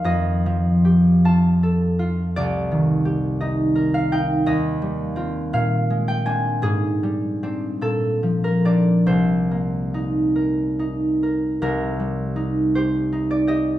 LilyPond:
\new Staff \with { instrumentName = "Harp" } { \time 6/8 \key c \minor \tempo 4. = 53 << { <c'' ees'' f'' g''>4. a''4. | d''4. ees''8. f''16 g''8 | ees''4. f''8. g''16 aes''8 | aes'4. a'8. bes'16 d''8 |
c''2. | bes'4. c''8. d''16 ees''8 | } \\ { <f, f f' g'>8 f8 g'8 f'8 a'8 f'8 | c,8 ees8 g'8 ees'8 bes'8 ees'8 | ees,8 g8 <c' f'>8 bes,8 aes8 <c' d'>8 | aes,8 g8 <c' d'>8 bes,8 f8 <c' d'>8 |
c,8 bes8 ees'8 bes'8 ees'8 bes'8 | c,8 g8 ees'8 g'8 ees'8 g'8 | } >> }